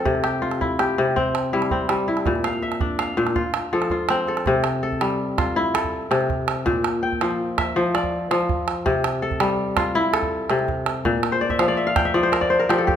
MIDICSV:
0, 0, Header, 1, 3, 480
1, 0, Start_track
1, 0, Tempo, 366300
1, 76, Time_signature, 12, 3, 24, 8
1, 16983, End_track
2, 0, Start_track
2, 0, Title_t, "Kora"
2, 0, Program_c, 0, 46
2, 0, Note_on_c, 0, 53, 66
2, 0, Note_on_c, 0, 60, 78
2, 0, Note_on_c, 0, 65, 65
2, 0, Note_on_c, 0, 69, 63
2, 70, Note_on_c, 0, 48, 76
2, 142, Note_off_c, 0, 53, 0
2, 308, Note_on_c, 0, 67, 60
2, 543, Note_off_c, 0, 65, 0
2, 548, Note_on_c, 0, 65, 67
2, 800, Note_on_c, 0, 64, 65
2, 1035, Note_off_c, 0, 67, 0
2, 1040, Note_on_c, 0, 67, 65
2, 1272, Note_off_c, 0, 48, 0
2, 1288, Note_on_c, 0, 48, 84
2, 1517, Note_off_c, 0, 60, 0
2, 1523, Note_on_c, 0, 60, 72
2, 1556, Note_off_c, 0, 69, 0
2, 2000, Note_off_c, 0, 64, 0
2, 2005, Note_on_c, 0, 64, 66
2, 2007, Note_on_c, 0, 55, 73
2, 2084, Note_off_c, 0, 65, 0
2, 2240, Note_off_c, 0, 60, 0
2, 2245, Note_on_c, 0, 60, 61
2, 2465, Note_off_c, 0, 55, 0
2, 2481, Note_on_c, 0, 55, 76
2, 2717, Note_off_c, 0, 64, 0
2, 2723, Note_on_c, 0, 64, 63
2, 2891, Note_off_c, 0, 67, 0
2, 2967, Note_on_c, 0, 46, 70
2, 3025, Note_off_c, 0, 48, 0
2, 3025, Note_off_c, 0, 55, 0
2, 3202, Note_on_c, 0, 77, 63
2, 3281, Note_off_c, 0, 64, 0
2, 3439, Note_on_c, 0, 76, 61
2, 3679, Note_on_c, 0, 62, 62
2, 3909, Note_off_c, 0, 77, 0
2, 3914, Note_on_c, 0, 77, 64
2, 4140, Note_off_c, 0, 46, 0
2, 4155, Note_on_c, 0, 46, 80
2, 4398, Note_on_c, 0, 65, 68
2, 4467, Note_off_c, 0, 46, 0
2, 4477, Note_off_c, 0, 76, 0
2, 4604, Note_off_c, 0, 60, 0
2, 4884, Note_on_c, 0, 53, 75
2, 4888, Note_on_c, 0, 69, 58
2, 5121, Note_off_c, 0, 65, 0
2, 5127, Note_on_c, 0, 65, 58
2, 5223, Note_off_c, 0, 77, 0
2, 5373, Note_on_c, 0, 60, 74
2, 5606, Note_off_c, 0, 69, 0
2, 5611, Note_on_c, 0, 69, 64
2, 5860, Note_on_c, 0, 48, 87
2, 5880, Note_off_c, 0, 62, 0
2, 5909, Note_off_c, 0, 53, 0
2, 6322, Note_off_c, 0, 69, 0
2, 6327, Note_on_c, 0, 69, 67
2, 6567, Note_on_c, 0, 55, 63
2, 7044, Note_off_c, 0, 65, 0
2, 7049, Note_on_c, 0, 65, 67
2, 7288, Note_on_c, 0, 64, 83
2, 7520, Note_off_c, 0, 69, 0
2, 7525, Note_on_c, 0, 69, 63
2, 7731, Note_off_c, 0, 60, 0
2, 7987, Note_off_c, 0, 48, 0
2, 8003, Note_on_c, 0, 48, 76
2, 8723, Note_on_c, 0, 46, 82
2, 8788, Note_off_c, 0, 55, 0
2, 8789, Note_off_c, 0, 48, 0
2, 8802, Note_off_c, 0, 69, 0
2, 9032, Note_off_c, 0, 65, 0
2, 9208, Note_on_c, 0, 79, 65
2, 9341, Note_off_c, 0, 64, 0
2, 9455, Note_on_c, 0, 53, 69
2, 9930, Note_on_c, 0, 76, 70
2, 10154, Note_off_c, 0, 53, 0
2, 10170, Note_on_c, 0, 53, 86
2, 10227, Note_off_c, 0, 46, 0
2, 10409, Note_on_c, 0, 74, 61
2, 10429, Note_off_c, 0, 79, 0
2, 10872, Note_off_c, 0, 53, 0
2, 10888, Note_on_c, 0, 53, 83
2, 10966, Note_off_c, 0, 76, 0
2, 11606, Note_on_c, 0, 48, 84
2, 11665, Note_off_c, 0, 53, 0
2, 11861, Note_off_c, 0, 74, 0
2, 12086, Note_on_c, 0, 69, 70
2, 12320, Note_on_c, 0, 55, 67
2, 12804, Note_on_c, 0, 65, 75
2, 13040, Note_on_c, 0, 64, 96
2, 13272, Note_off_c, 0, 69, 0
2, 13277, Note_on_c, 0, 69, 64
2, 13747, Note_off_c, 0, 48, 0
2, 13763, Note_on_c, 0, 48, 78
2, 14481, Note_on_c, 0, 46, 77
2, 14541, Note_off_c, 0, 48, 0
2, 14542, Note_off_c, 0, 55, 0
2, 14560, Note_off_c, 0, 69, 0
2, 14788, Note_off_c, 0, 65, 0
2, 14835, Note_on_c, 0, 72, 71
2, 14952, Note_on_c, 0, 74, 74
2, 15070, Note_on_c, 0, 76, 66
2, 15094, Note_off_c, 0, 64, 0
2, 15189, Note_on_c, 0, 53, 70
2, 15193, Note_on_c, 0, 77, 60
2, 15301, Note_off_c, 0, 74, 0
2, 15306, Note_on_c, 0, 74, 72
2, 15419, Note_off_c, 0, 76, 0
2, 15424, Note_on_c, 0, 76, 70
2, 15503, Note_off_c, 0, 77, 0
2, 15550, Note_on_c, 0, 77, 76
2, 15668, Note_on_c, 0, 79, 71
2, 15786, Note_off_c, 0, 76, 0
2, 15791, Note_on_c, 0, 76, 69
2, 15870, Note_off_c, 0, 77, 0
2, 15896, Note_off_c, 0, 53, 0
2, 15906, Note_off_c, 0, 74, 0
2, 15911, Note_on_c, 0, 53, 88
2, 15911, Note_on_c, 0, 74, 77
2, 15980, Note_off_c, 0, 46, 0
2, 16021, Note_off_c, 0, 72, 0
2, 16027, Note_on_c, 0, 72, 71
2, 16144, Note_on_c, 0, 70, 66
2, 16259, Note_off_c, 0, 74, 0
2, 16264, Note_on_c, 0, 74, 69
2, 16373, Note_off_c, 0, 72, 0
2, 16378, Note_on_c, 0, 72, 67
2, 16498, Note_off_c, 0, 70, 0
2, 16503, Note_on_c, 0, 70, 69
2, 16618, Note_off_c, 0, 53, 0
2, 16632, Note_on_c, 0, 67, 65
2, 16633, Note_on_c, 0, 53, 78
2, 16711, Note_off_c, 0, 76, 0
2, 16752, Note_on_c, 0, 69, 62
2, 16830, Note_off_c, 0, 70, 0
2, 16861, Note_off_c, 0, 67, 0
2, 16866, Note_on_c, 0, 67, 66
2, 16889, Note_off_c, 0, 79, 0
2, 16983, Note_off_c, 0, 53, 0
2, 16983, Note_off_c, 0, 67, 0
2, 16983, Note_off_c, 0, 69, 0
2, 16983, Note_off_c, 0, 72, 0
2, 16983, Note_off_c, 0, 74, 0
2, 16983, End_track
3, 0, Start_track
3, 0, Title_t, "Calabash"
3, 74, Note_on_c, 9, 36, 60
3, 192, Note_on_c, 9, 38, 17
3, 205, Note_off_c, 9, 36, 0
3, 311, Note_off_c, 9, 38, 0
3, 311, Note_on_c, 9, 38, 55
3, 442, Note_off_c, 9, 38, 0
3, 562, Note_on_c, 9, 38, 19
3, 674, Note_off_c, 9, 38, 0
3, 674, Note_on_c, 9, 38, 44
3, 804, Note_off_c, 9, 38, 0
3, 804, Note_on_c, 9, 36, 52
3, 804, Note_on_c, 9, 38, 19
3, 935, Note_off_c, 9, 36, 0
3, 935, Note_off_c, 9, 38, 0
3, 1040, Note_on_c, 9, 38, 62
3, 1171, Note_off_c, 9, 38, 0
3, 1533, Note_on_c, 9, 36, 59
3, 1664, Note_off_c, 9, 36, 0
3, 1767, Note_on_c, 9, 38, 60
3, 1898, Note_off_c, 9, 38, 0
3, 2122, Note_on_c, 9, 38, 48
3, 2241, Note_on_c, 9, 36, 50
3, 2253, Note_off_c, 9, 38, 0
3, 2372, Note_off_c, 9, 36, 0
3, 2478, Note_on_c, 9, 38, 60
3, 2610, Note_off_c, 9, 38, 0
3, 2841, Note_on_c, 9, 38, 45
3, 2956, Note_off_c, 9, 38, 0
3, 2956, Note_on_c, 9, 36, 66
3, 2956, Note_on_c, 9, 38, 21
3, 3084, Note_off_c, 9, 38, 0
3, 3084, Note_on_c, 9, 38, 21
3, 3087, Note_off_c, 9, 36, 0
3, 3201, Note_off_c, 9, 38, 0
3, 3201, Note_on_c, 9, 38, 58
3, 3318, Note_off_c, 9, 38, 0
3, 3318, Note_on_c, 9, 38, 19
3, 3449, Note_off_c, 9, 38, 0
3, 3560, Note_on_c, 9, 38, 48
3, 3676, Note_on_c, 9, 36, 66
3, 3691, Note_off_c, 9, 38, 0
3, 3807, Note_off_c, 9, 36, 0
3, 3918, Note_on_c, 9, 38, 64
3, 4049, Note_off_c, 9, 38, 0
3, 4280, Note_on_c, 9, 38, 47
3, 4399, Note_on_c, 9, 36, 64
3, 4411, Note_off_c, 9, 38, 0
3, 4530, Note_off_c, 9, 36, 0
3, 4636, Note_on_c, 9, 38, 66
3, 4767, Note_off_c, 9, 38, 0
3, 5002, Note_on_c, 9, 38, 47
3, 5110, Note_on_c, 9, 36, 56
3, 5133, Note_off_c, 9, 38, 0
3, 5241, Note_off_c, 9, 36, 0
3, 5355, Note_on_c, 9, 38, 66
3, 5486, Note_off_c, 9, 38, 0
3, 5602, Note_on_c, 9, 38, 20
3, 5727, Note_off_c, 9, 38, 0
3, 5727, Note_on_c, 9, 38, 47
3, 5842, Note_off_c, 9, 38, 0
3, 5842, Note_on_c, 9, 36, 67
3, 5842, Note_on_c, 9, 38, 20
3, 5973, Note_off_c, 9, 36, 0
3, 5973, Note_off_c, 9, 38, 0
3, 6077, Note_on_c, 9, 38, 62
3, 6208, Note_off_c, 9, 38, 0
3, 6449, Note_on_c, 9, 36, 49
3, 6566, Note_on_c, 9, 38, 62
3, 6580, Note_off_c, 9, 36, 0
3, 6689, Note_off_c, 9, 38, 0
3, 6689, Note_on_c, 9, 38, 21
3, 6820, Note_off_c, 9, 38, 0
3, 7053, Note_on_c, 9, 36, 65
3, 7053, Note_on_c, 9, 38, 64
3, 7185, Note_off_c, 9, 36, 0
3, 7185, Note_off_c, 9, 38, 0
3, 7533, Note_on_c, 9, 38, 72
3, 7655, Note_on_c, 9, 36, 51
3, 7664, Note_off_c, 9, 38, 0
3, 7786, Note_off_c, 9, 36, 0
3, 8013, Note_on_c, 9, 38, 58
3, 8133, Note_off_c, 9, 38, 0
3, 8133, Note_on_c, 9, 38, 22
3, 8252, Note_on_c, 9, 36, 65
3, 8264, Note_off_c, 9, 38, 0
3, 8383, Note_off_c, 9, 36, 0
3, 8490, Note_on_c, 9, 38, 63
3, 8621, Note_off_c, 9, 38, 0
3, 8738, Note_on_c, 9, 36, 62
3, 8738, Note_on_c, 9, 38, 21
3, 8869, Note_off_c, 9, 36, 0
3, 8869, Note_off_c, 9, 38, 0
3, 8969, Note_on_c, 9, 38, 61
3, 9100, Note_off_c, 9, 38, 0
3, 9334, Note_on_c, 9, 36, 51
3, 9451, Note_on_c, 9, 38, 60
3, 9465, Note_off_c, 9, 36, 0
3, 9573, Note_off_c, 9, 38, 0
3, 9573, Note_on_c, 9, 38, 22
3, 9704, Note_off_c, 9, 38, 0
3, 9933, Note_on_c, 9, 36, 63
3, 9933, Note_on_c, 9, 38, 66
3, 10064, Note_off_c, 9, 36, 0
3, 10064, Note_off_c, 9, 38, 0
3, 10415, Note_on_c, 9, 38, 62
3, 10531, Note_on_c, 9, 36, 54
3, 10546, Note_off_c, 9, 38, 0
3, 10662, Note_off_c, 9, 36, 0
3, 10892, Note_on_c, 9, 38, 61
3, 11013, Note_off_c, 9, 38, 0
3, 11013, Note_on_c, 9, 38, 23
3, 11130, Note_on_c, 9, 36, 69
3, 11144, Note_off_c, 9, 38, 0
3, 11261, Note_off_c, 9, 36, 0
3, 11370, Note_on_c, 9, 38, 64
3, 11501, Note_off_c, 9, 38, 0
3, 11612, Note_on_c, 9, 36, 66
3, 11612, Note_on_c, 9, 38, 23
3, 11743, Note_off_c, 9, 36, 0
3, 11743, Note_off_c, 9, 38, 0
3, 11850, Note_on_c, 9, 38, 66
3, 11981, Note_off_c, 9, 38, 0
3, 12203, Note_on_c, 9, 36, 58
3, 12321, Note_on_c, 9, 38, 65
3, 12334, Note_off_c, 9, 36, 0
3, 12448, Note_off_c, 9, 38, 0
3, 12448, Note_on_c, 9, 38, 22
3, 12579, Note_off_c, 9, 38, 0
3, 12798, Note_on_c, 9, 36, 63
3, 12798, Note_on_c, 9, 38, 72
3, 12929, Note_off_c, 9, 36, 0
3, 12929, Note_off_c, 9, 38, 0
3, 13282, Note_on_c, 9, 38, 69
3, 13398, Note_on_c, 9, 36, 50
3, 13413, Note_off_c, 9, 38, 0
3, 13530, Note_off_c, 9, 36, 0
3, 13753, Note_on_c, 9, 38, 53
3, 13874, Note_off_c, 9, 38, 0
3, 13874, Note_on_c, 9, 38, 21
3, 13999, Note_on_c, 9, 36, 63
3, 14005, Note_off_c, 9, 38, 0
3, 14130, Note_off_c, 9, 36, 0
3, 14236, Note_on_c, 9, 38, 64
3, 14367, Note_off_c, 9, 38, 0
3, 14478, Note_on_c, 9, 36, 66
3, 14609, Note_off_c, 9, 36, 0
3, 14717, Note_on_c, 9, 38, 59
3, 14848, Note_off_c, 9, 38, 0
3, 15069, Note_on_c, 9, 36, 49
3, 15069, Note_on_c, 9, 38, 20
3, 15191, Note_off_c, 9, 38, 0
3, 15191, Note_on_c, 9, 38, 64
3, 15200, Note_off_c, 9, 36, 0
3, 15323, Note_off_c, 9, 38, 0
3, 15673, Note_on_c, 9, 36, 72
3, 15673, Note_on_c, 9, 38, 63
3, 15804, Note_off_c, 9, 36, 0
3, 15804, Note_off_c, 9, 38, 0
3, 16034, Note_on_c, 9, 38, 18
3, 16156, Note_off_c, 9, 38, 0
3, 16156, Note_on_c, 9, 38, 62
3, 16276, Note_on_c, 9, 36, 44
3, 16287, Note_off_c, 9, 38, 0
3, 16397, Note_on_c, 9, 38, 21
3, 16407, Note_off_c, 9, 36, 0
3, 16518, Note_off_c, 9, 38, 0
3, 16518, Note_on_c, 9, 38, 21
3, 16647, Note_off_c, 9, 38, 0
3, 16647, Note_on_c, 9, 38, 62
3, 16778, Note_off_c, 9, 38, 0
3, 16879, Note_on_c, 9, 36, 68
3, 16983, Note_off_c, 9, 36, 0
3, 16983, End_track
0, 0, End_of_file